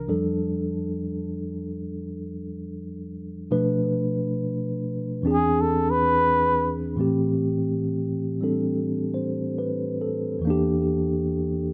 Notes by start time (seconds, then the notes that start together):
0.08 F2 F3 G3 D4 A4
3.51 B2 F3 A3 D4 B4
5.22 E2 E3 C4 D4
5.27 G#4
5.33 G#4
5.61 A4
5.90 B4
6.96 A2 E3 A3 C4
7.01 G4
8.41 G3 C4 D4 A4
9.14 C5
9.59 B4
10.01 A4
10.39 E2 E3
10.45 A#3 D4
10.50 G4